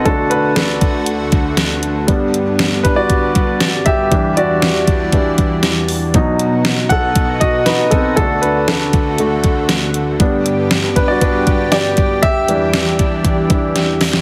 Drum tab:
HH |x-x-x-x-x-x-x-x-|x-x-x-x-x-x-x-x-|x-x-x-x-x-x-x-o-|x-x-x-x-x-x-x-x-|
SD |----o-------o---|----o-------o---|----o-------o---|----o-------o---|
BD |o-----o---o-----|o-----o-o-o---o-|o-----o-o-o-----|o-----o-o-o---o-|

HH |x-x-x-x-x-x-x-x-|x-x-x-x-x-x-x-x-|x-x-x-x-x-x-x-o-|
SD |----o-------o---|----o-------o---|----o-------o-oo|
BD |o-----o---o-----|o-----o-o-o---o-|o-----o-o-o-----|